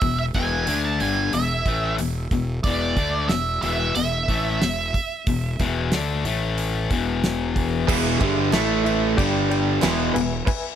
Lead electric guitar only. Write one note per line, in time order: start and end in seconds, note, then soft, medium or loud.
0.00 0.17 E5 medium
0.19 0.24 E5 medium
0.35 0.81 G#5 loud
0.85 1.00 A5 medium
1.01 1.31 G#5 medium
1.33 1.95 E5 medium
2.64 3.26 D5 medium
3.29 3.61 E5 loud
3.62 3.95 E5 medium
3.96 7.19 E5 medium